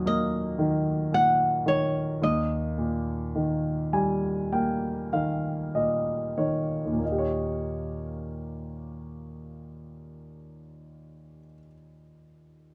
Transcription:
0.00 2.18 D#2 medium
0.00 0.54 A#2 soft
0.00 0.57 D#3 soft
0.00 1.63 F#3 soft
0.06 2.18 A#3 soft
0.06 1.14 D#5 medium
0.59 1.64 D#3 soft
1.12 2.19 A#2 soft
1.12 1.68 F#5 medium
1.66 2.20 D#3 soft
1.66 2.23 C#5 medium
2.22 6.84 D#2 soft
2.22 5.71 D#5 medium
2.78 5.08 A#2 soft
3.35 5.11 D#3 soft
3.93 6.33 G3 soft
3.93 4.48 G#5 soft
4.53 6.97 A#3 soft
4.53 5.09 G5 soft
5.13 6.36 D#3 soft
5.13 5.70 F5 soft
5.75 6.91 A#2 soft
5.75 6.34 D#5 soft
6.38 7.00 D#3 soft
6.38 6.98 C#5 soft
6.85 11.39 D#2 soft
6.92 11.46 A#2 soft
6.99 11.53 A#3 soft
7.05 11.59 D#4 soft
7.12 11.66 G4 soft
7.19 11.73 C#5 soft

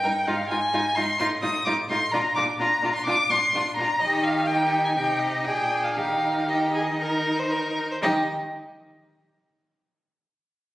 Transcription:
0.00 0.12 G2 medium
0.00 0.12 A#4 soft
0.00 0.29 G5 medium
0.05 0.13 D#4 soft
0.27 0.36 G#2 medium
0.27 0.35 D#4 medium
0.27 0.36 F4 medium
0.27 0.49 F5 medium
0.49 0.58 G#2 medium
0.49 0.59 D#4 soft
0.49 0.59 F4 soft
0.49 0.96 G#5 medium
0.74 0.82 G#2 medium
0.74 0.82 D#4 soft
0.74 0.82 F4 medium
0.95 1.05 G#2 medium
0.95 1.05 D#4 soft
0.95 1.05 F4 soft
0.95 1.18 C6 medium
1.19 1.27 A2 medium
1.19 1.29 D#4 medium
1.19 1.27 F4 medium
1.19 1.27 C6 medium
1.42 1.50 A2 medium
1.42 1.51 D#4 medium
1.42 1.51 F4 soft
1.42 1.65 D#6 medium
1.65 1.74 A2 medium
1.65 1.74 D#4 medium
1.65 1.74 F4 soft
1.65 1.73 D6 medium
1.89 1.97 A2 medium
1.89 1.98 D#4 soft
1.89 1.99 F4 medium
1.89 2.13 C6 medium
2.11 2.21 A#2 medium
2.11 2.21 D4 medium
2.11 2.22 F4 medium
2.11 2.35 A#5 medium
2.35 2.44 A#2 medium
2.35 2.44 D4 medium
2.35 2.45 F4 soft
2.35 2.43 D6 medium
2.59 2.67 A#2 medium
2.59 2.68 D4 medium
2.59 2.69 F4 medium
2.59 2.94 A#5 medium
2.82 2.90 A#2 medium
2.82 2.90 D4 medium
2.82 2.92 F4 medium
2.95 3.05 C6 medium
3.06 3.14 A#2 medium
3.06 3.15 D4 medium
3.06 3.16 F4 medium
3.06 3.31 D6 loud
3.29 3.37 A#2 medium
3.29 3.39 D4 medium
3.29 3.40 F4 soft
3.29 3.76 C6 medium
3.53 3.61 A#2 medium
3.53 3.63 D4 medium
3.53 3.63 F4 medium
3.76 3.85 A#2 medium
3.76 3.86 D4 soft
3.76 4.01 A#5 medium
3.81 3.89 F4 medium
3.99 4.98 D#3 medium
3.99 4.45 D#4 medium
3.99 4.25 D#5 medium
4.03 4.46 G4 medium
4.24 4.48 F5 medium
4.47 4.96 D#4 medium
4.47 4.95 G4 medium
4.47 4.83 G5 medium
4.85 4.89 G#5 medium
4.95 5.47 C3 medium
4.95 5.47 D#4 medium
4.95 5.47 G4 medium
4.95 5.21 G5 medium
5.19 5.46 D#5 medium
5.44 5.98 A#2 medium
5.44 5.99 D4 medium
5.44 5.97 G#4 medium
5.44 5.86 G5 medium
5.84 5.94 F5 medium
5.95 7.81 D#3 medium
5.95 6.48 D#4 soft
5.95 6.48 G4 soft
5.95 6.50 F5 medium
6.49 7.79 D#4 soft
6.49 6.73 G4 medium
6.49 7.52 D#5 medium
6.75 6.83 G#4 medium
7.00 7.40 A#4 medium
7.39 7.52 C5 medium
7.51 7.89 A#4 medium
7.91 7.96 C5 soft
8.02 8.29 D#3 medium
8.02 8.29 D#4 medium
8.02 8.30 G4 medium
8.02 8.29 D#5 medium

